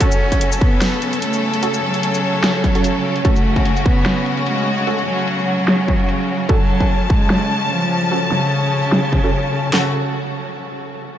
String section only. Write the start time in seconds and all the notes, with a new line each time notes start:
Already playing: C#3 C#4
0.01 A4
3.25 F#4
6.49 A5
9.73 C#3 A3 F#4